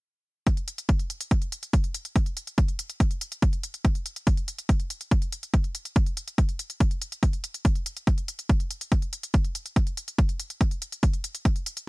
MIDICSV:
0, 0, Header, 1, 2, 480
1, 0, Start_track
1, 0, Tempo, 422535
1, 529, Time_signature, 4, 2, 24, 8
1, 13498, End_track
2, 0, Start_track
2, 0, Title_t, "Drums"
2, 529, Note_on_c, 9, 36, 110
2, 529, Note_on_c, 9, 42, 52
2, 643, Note_off_c, 9, 36, 0
2, 643, Note_off_c, 9, 42, 0
2, 649, Note_on_c, 9, 42, 26
2, 763, Note_off_c, 9, 42, 0
2, 769, Note_on_c, 9, 42, 89
2, 883, Note_off_c, 9, 42, 0
2, 889, Note_on_c, 9, 42, 53
2, 1003, Note_off_c, 9, 42, 0
2, 1009, Note_on_c, 9, 36, 115
2, 1009, Note_on_c, 9, 42, 57
2, 1123, Note_off_c, 9, 36, 0
2, 1123, Note_off_c, 9, 42, 0
2, 1130, Note_on_c, 9, 42, 26
2, 1243, Note_off_c, 9, 42, 0
2, 1250, Note_on_c, 9, 42, 90
2, 1363, Note_off_c, 9, 42, 0
2, 1370, Note_on_c, 9, 42, 53
2, 1483, Note_off_c, 9, 42, 0
2, 1489, Note_on_c, 9, 36, 115
2, 1489, Note_on_c, 9, 42, 55
2, 1603, Note_off_c, 9, 36, 0
2, 1603, Note_off_c, 9, 42, 0
2, 1609, Note_on_c, 9, 42, 27
2, 1723, Note_off_c, 9, 42, 0
2, 1729, Note_on_c, 9, 42, 94
2, 1843, Note_off_c, 9, 42, 0
2, 1850, Note_on_c, 9, 42, 52
2, 1963, Note_off_c, 9, 42, 0
2, 1969, Note_on_c, 9, 36, 113
2, 1969, Note_on_c, 9, 42, 49
2, 2083, Note_off_c, 9, 36, 0
2, 2083, Note_off_c, 9, 42, 0
2, 2090, Note_on_c, 9, 42, 26
2, 2203, Note_off_c, 9, 42, 0
2, 2209, Note_on_c, 9, 42, 93
2, 2323, Note_off_c, 9, 42, 0
2, 2329, Note_on_c, 9, 42, 53
2, 2443, Note_off_c, 9, 42, 0
2, 2449, Note_on_c, 9, 36, 116
2, 2449, Note_on_c, 9, 42, 49
2, 2563, Note_off_c, 9, 36, 0
2, 2563, Note_off_c, 9, 42, 0
2, 2569, Note_on_c, 9, 42, 26
2, 2683, Note_off_c, 9, 42, 0
2, 2689, Note_on_c, 9, 42, 87
2, 2803, Note_off_c, 9, 42, 0
2, 2809, Note_on_c, 9, 42, 49
2, 2923, Note_off_c, 9, 42, 0
2, 2929, Note_on_c, 9, 36, 116
2, 2930, Note_on_c, 9, 42, 51
2, 3043, Note_off_c, 9, 36, 0
2, 3043, Note_off_c, 9, 42, 0
2, 3049, Note_on_c, 9, 42, 25
2, 3163, Note_off_c, 9, 42, 0
2, 3169, Note_on_c, 9, 42, 94
2, 3283, Note_off_c, 9, 42, 0
2, 3289, Note_on_c, 9, 42, 49
2, 3403, Note_off_c, 9, 42, 0
2, 3409, Note_on_c, 9, 36, 121
2, 3409, Note_on_c, 9, 42, 53
2, 3523, Note_off_c, 9, 36, 0
2, 3523, Note_off_c, 9, 42, 0
2, 3529, Note_on_c, 9, 42, 27
2, 3643, Note_off_c, 9, 42, 0
2, 3649, Note_on_c, 9, 42, 85
2, 3763, Note_off_c, 9, 42, 0
2, 3769, Note_on_c, 9, 42, 52
2, 3883, Note_off_c, 9, 42, 0
2, 3889, Note_on_c, 9, 36, 118
2, 3889, Note_on_c, 9, 42, 49
2, 4003, Note_off_c, 9, 36, 0
2, 4003, Note_off_c, 9, 42, 0
2, 4009, Note_on_c, 9, 42, 27
2, 4123, Note_off_c, 9, 42, 0
2, 4129, Note_on_c, 9, 42, 89
2, 4243, Note_off_c, 9, 42, 0
2, 4249, Note_on_c, 9, 42, 51
2, 4362, Note_off_c, 9, 42, 0
2, 4369, Note_on_c, 9, 36, 116
2, 4369, Note_on_c, 9, 42, 50
2, 4483, Note_off_c, 9, 36, 0
2, 4483, Note_off_c, 9, 42, 0
2, 4489, Note_on_c, 9, 42, 25
2, 4603, Note_off_c, 9, 42, 0
2, 4609, Note_on_c, 9, 42, 82
2, 4722, Note_off_c, 9, 42, 0
2, 4729, Note_on_c, 9, 42, 49
2, 4843, Note_off_c, 9, 42, 0
2, 4849, Note_on_c, 9, 36, 119
2, 4849, Note_on_c, 9, 42, 54
2, 4963, Note_off_c, 9, 36, 0
2, 4963, Note_off_c, 9, 42, 0
2, 4969, Note_on_c, 9, 42, 25
2, 5082, Note_off_c, 9, 42, 0
2, 5089, Note_on_c, 9, 42, 88
2, 5203, Note_off_c, 9, 42, 0
2, 5209, Note_on_c, 9, 42, 51
2, 5323, Note_off_c, 9, 42, 0
2, 5329, Note_on_c, 9, 36, 121
2, 5329, Note_on_c, 9, 42, 52
2, 5442, Note_off_c, 9, 42, 0
2, 5443, Note_off_c, 9, 36, 0
2, 5449, Note_on_c, 9, 42, 26
2, 5563, Note_off_c, 9, 42, 0
2, 5569, Note_on_c, 9, 42, 88
2, 5683, Note_off_c, 9, 42, 0
2, 5689, Note_on_c, 9, 42, 50
2, 5803, Note_off_c, 9, 42, 0
2, 5809, Note_on_c, 9, 36, 115
2, 5809, Note_on_c, 9, 42, 48
2, 5923, Note_off_c, 9, 36, 0
2, 5923, Note_off_c, 9, 42, 0
2, 5929, Note_on_c, 9, 42, 26
2, 6043, Note_off_c, 9, 42, 0
2, 6049, Note_on_c, 9, 42, 85
2, 6163, Note_off_c, 9, 42, 0
2, 6169, Note_on_c, 9, 42, 49
2, 6283, Note_off_c, 9, 42, 0
2, 6289, Note_on_c, 9, 36, 115
2, 6289, Note_on_c, 9, 42, 48
2, 6403, Note_off_c, 9, 36, 0
2, 6403, Note_off_c, 9, 42, 0
2, 6409, Note_on_c, 9, 42, 23
2, 6523, Note_off_c, 9, 42, 0
2, 6529, Note_on_c, 9, 42, 88
2, 6643, Note_off_c, 9, 42, 0
2, 6649, Note_on_c, 9, 42, 46
2, 6763, Note_off_c, 9, 42, 0
2, 6769, Note_on_c, 9, 36, 123
2, 6769, Note_on_c, 9, 42, 50
2, 6883, Note_off_c, 9, 36, 0
2, 6883, Note_off_c, 9, 42, 0
2, 6890, Note_on_c, 9, 42, 24
2, 7003, Note_off_c, 9, 42, 0
2, 7009, Note_on_c, 9, 42, 84
2, 7123, Note_off_c, 9, 42, 0
2, 7130, Note_on_c, 9, 42, 50
2, 7243, Note_off_c, 9, 42, 0
2, 7250, Note_on_c, 9, 36, 119
2, 7250, Note_on_c, 9, 42, 50
2, 7363, Note_off_c, 9, 36, 0
2, 7363, Note_off_c, 9, 42, 0
2, 7370, Note_on_c, 9, 42, 24
2, 7483, Note_off_c, 9, 42, 0
2, 7489, Note_on_c, 9, 42, 86
2, 7603, Note_off_c, 9, 42, 0
2, 7609, Note_on_c, 9, 42, 48
2, 7723, Note_off_c, 9, 42, 0
2, 7729, Note_on_c, 9, 36, 115
2, 7729, Note_on_c, 9, 42, 47
2, 7843, Note_off_c, 9, 36, 0
2, 7843, Note_off_c, 9, 42, 0
2, 7850, Note_on_c, 9, 42, 25
2, 7963, Note_off_c, 9, 42, 0
2, 7970, Note_on_c, 9, 42, 83
2, 8083, Note_off_c, 9, 42, 0
2, 8090, Note_on_c, 9, 42, 50
2, 8203, Note_off_c, 9, 42, 0
2, 8210, Note_on_c, 9, 36, 107
2, 8210, Note_on_c, 9, 42, 48
2, 8323, Note_off_c, 9, 36, 0
2, 8323, Note_off_c, 9, 42, 0
2, 8330, Note_on_c, 9, 42, 24
2, 8443, Note_off_c, 9, 42, 0
2, 8450, Note_on_c, 9, 42, 81
2, 8563, Note_off_c, 9, 42, 0
2, 8570, Note_on_c, 9, 42, 49
2, 8683, Note_off_c, 9, 42, 0
2, 8689, Note_on_c, 9, 36, 119
2, 8690, Note_on_c, 9, 42, 52
2, 8803, Note_off_c, 9, 36, 0
2, 8803, Note_off_c, 9, 42, 0
2, 8809, Note_on_c, 9, 42, 23
2, 8923, Note_off_c, 9, 42, 0
2, 8929, Note_on_c, 9, 42, 89
2, 9043, Note_off_c, 9, 42, 0
2, 9049, Note_on_c, 9, 42, 47
2, 9163, Note_off_c, 9, 42, 0
2, 9169, Note_on_c, 9, 36, 116
2, 9169, Note_on_c, 9, 42, 49
2, 9283, Note_off_c, 9, 36, 0
2, 9283, Note_off_c, 9, 42, 0
2, 9290, Note_on_c, 9, 42, 26
2, 9403, Note_off_c, 9, 42, 0
2, 9409, Note_on_c, 9, 42, 85
2, 9523, Note_off_c, 9, 42, 0
2, 9529, Note_on_c, 9, 42, 50
2, 9643, Note_off_c, 9, 42, 0
2, 9649, Note_on_c, 9, 42, 49
2, 9650, Note_on_c, 9, 36, 113
2, 9763, Note_off_c, 9, 36, 0
2, 9763, Note_off_c, 9, 42, 0
2, 9769, Note_on_c, 9, 42, 25
2, 9883, Note_off_c, 9, 42, 0
2, 9890, Note_on_c, 9, 42, 88
2, 10003, Note_off_c, 9, 42, 0
2, 10010, Note_on_c, 9, 42, 50
2, 10123, Note_off_c, 9, 42, 0
2, 10129, Note_on_c, 9, 36, 104
2, 10129, Note_on_c, 9, 42, 53
2, 10243, Note_off_c, 9, 36, 0
2, 10243, Note_off_c, 9, 42, 0
2, 10249, Note_on_c, 9, 42, 26
2, 10363, Note_off_c, 9, 42, 0
2, 10369, Note_on_c, 9, 42, 87
2, 10483, Note_off_c, 9, 42, 0
2, 10490, Note_on_c, 9, 42, 50
2, 10603, Note_off_c, 9, 42, 0
2, 10609, Note_on_c, 9, 36, 111
2, 10609, Note_on_c, 9, 42, 54
2, 10723, Note_off_c, 9, 36, 0
2, 10723, Note_off_c, 9, 42, 0
2, 10730, Note_on_c, 9, 42, 25
2, 10843, Note_off_c, 9, 42, 0
2, 10850, Note_on_c, 9, 42, 92
2, 10963, Note_off_c, 9, 42, 0
2, 10970, Note_on_c, 9, 42, 50
2, 11083, Note_off_c, 9, 42, 0
2, 11089, Note_on_c, 9, 36, 115
2, 11090, Note_on_c, 9, 42, 49
2, 11203, Note_off_c, 9, 36, 0
2, 11203, Note_off_c, 9, 42, 0
2, 11210, Note_on_c, 9, 42, 26
2, 11323, Note_off_c, 9, 42, 0
2, 11330, Note_on_c, 9, 42, 89
2, 11443, Note_off_c, 9, 42, 0
2, 11450, Note_on_c, 9, 42, 53
2, 11563, Note_off_c, 9, 42, 0
2, 11569, Note_on_c, 9, 36, 112
2, 11570, Note_on_c, 9, 42, 47
2, 11683, Note_off_c, 9, 36, 0
2, 11683, Note_off_c, 9, 42, 0
2, 11689, Note_on_c, 9, 42, 25
2, 11803, Note_off_c, 9, 42, 0
2, 11809, Note_on_c, 9, 42, 87
2, 11923, Note_off_c, 9, 42, 0
2, 11930, Note_on_c, 9, 42, 53
2, 12043, Note_off_c, 9, 42, 0
2, 12049, Note_on_c, 9, 36, 99
2, 12050, Note_on_c, 9, 42, 51
2, 12163, Note_off_c, 9, 36, 0
2, 12163, Note_off_c, 9, 42, 0
2, 12169, Note_on_c, 9, 42, 27
2, 12283, Note_off_c, 9, 42, 0
2, 12290, Note_on_c, 9, 42, 88
2, 12403, Note_off_c, 9, 42, 0
2, 12409, Note_on_c, 9, 42, 51
2, 12523, Note_off_c, 9, 42, 0
2, 12529, Note_on_c, 9, 36, 111
2, 12529, Note_on_c, 9, 42, 56
2, 12643, Note_off_c, 9, 36, 0
2, 12643, Note_off_c, 9, 42, 0
2, 12649, Note_on_c, 9, 42, 27
2, 12763, Note_off_c, 9, 42, 0
2, 12770, Note_on_c, 9, 42, 97
2, 12883, Note_off_c, 9, 42, 0
2, 12889, Note_on_c, 9, 42, 51
2, 13003, Note_off_c, 9, 42, 0
2, 13009, Note_on_c, 9, 36, 110
2, 13010, Note_on_c, 9, 42, 56
2, 13123, Note_off_c, 9, 36, 0
2, 13123, Note_off_c, 9, 42, 0
2, 13129, Note_on_c, 9, 42, 27
2, 13243, Note_off_c, 9, 42, 0
2, 13249, Note_on_c, 9, 42, 90
2, 13363, Note_off_c, 9, 42, 0
2, 13369, Note_on_c, 9, 42, 55
2, 13483, Note_off_c, 9, 42, 0
2, 13498, End_track
0, 0, End_of_file